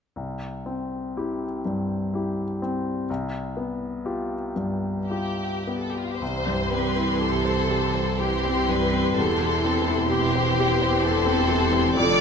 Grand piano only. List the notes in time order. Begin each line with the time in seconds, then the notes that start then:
0.16 C2
0.66 C4
1.17 E4 G4
1.65 G2
2.14 E4 G4
2.62 C4
3.10 C2
3.57 B3
4.05 F4 G4
4.56 G2
5.10 F4 G4
5.67 B3
6.22 C2
6.47 G2
6.72 C4
6.97 E4
7.21 G4
7.45 C5
7.71 G4
7.95 C5
8.20 G4
8.45 C4
8.69 G2
8.93 C4
9.18 E2
9.41 E3
9.64 C4
9.88 E4
10.12 G4
10.35 C5
10.60 G4
10.82 C5
11.05 G4
11.26 C4
11.49 E3
11.73 C4
11.97 F2